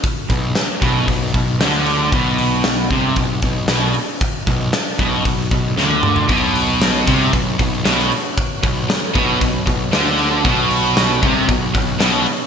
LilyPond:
<<
  \new Staff \with { instrumentName = "Tonewheel organ" } { \time 4/4 \key b \minor \tempo 4 = 115 r1 | r1 | r1 | <b fis' cis''>1~ |
<b fis' cis''>1~ | <b fis' cis''>1 | }
  \new Staff \with { instrumentName = "Distorted electric guitar" } { \clef bass \time 4/4 \key b \minor r8 b,8 r8 b,8 b,8 b,8 d4 | b,4. c8 b,8 b,8 b,8 r8 | r8 b,8 r8 b,8 b,8 b,8 d4 | b,4. c8 b,8 b,8 b,8 r8 |
r8 b,8 r8 b,8 b,8 b,8 d4 | b,4. c8 b,8 b,8 b,8 r8 | }
  \new Staff \with { instrumentName = "Distorted electric guitar" } { \clef bass \time 4/4 \key b \minor r1 | r1 | r1 | b,4. c8 b,8 b,8 b,8 r8 |
r8 b,8 r8 b,8 b,8 b,8 d4 | b,4. c8 b,8 b,8 b,8 r8 | }
  \new Staff \with { instrumentName = "Overdriven electric guitar" } { \clef bass \time 4/4 \key b \minor r8 b,8 r8 b,8 b,8 b,8 d4 | b,4. c8 b,8 b,8 b,8 r8 | r8 b,8 r8 b,8 b,8 b,8 d4 | b,4. c8 b,8 b,8 b,8 r8 |
r8 b,8 r8 b,8 b,8 b,8 d4 | b,4. c8 b,8 b,8 b,8 r8 | }
  \new Staff \with { instrumentName = "Picked electric bass" } { \clef bass \time 4/4 \key b \minor r8 b,,8 r8 b,,8 b,,8 b,,8 d,4 | b,,4. c,8 b,,8 b,,8 b,,8 r8 | r8 b,,8 r8 b,,8 b,,8 b,,8 d,4 | b,,4. c,8 b,,8 b,,8 b,,8 r8 |
r8 b,,8 r8 b,,8 b,,8 b,,8 d,4 | b,,4. c,8 b,,8 b,,8 b,,8 r8 | }
  \new DrumStaff \with { instrumentName = "Drums" } \drummode { \time 4/4 <hho bd>8 <hho bd>8 <hho sn>8 <hho bd>8 <hho bd>8 <hho bd>8 <hho sn>16 sn16 hho8 | <hho bd>8 hho8 <hho sn>8 <hho bd>8 <hho bd>8 <hho bd>8 <hho sn>8 hho8 | <hho bd>8 <hho bd>8 <hho sn>8 <hho bd>8 <hho bd>8 <hho bd>8 sn16 tommh16 toml16 tomfh16 | <hho bd>8 hho8 <hho sn>8 <hho bd>8 <hho bd>8 <hho bd>8 <hho sn>16 sn16 hho8 |
<hho bd>8 <hho bd>8 <hho sn>8 <hho bd>8 <hho bd>8 <hho bd>8 <hho sn>16 sn16 hho8 | <hho bd>8 hho8 <hho sn>8 <hho bd>8 <hho bd>8 <hho bd>8 <hho sn>16 sn16 hho8 | }
>>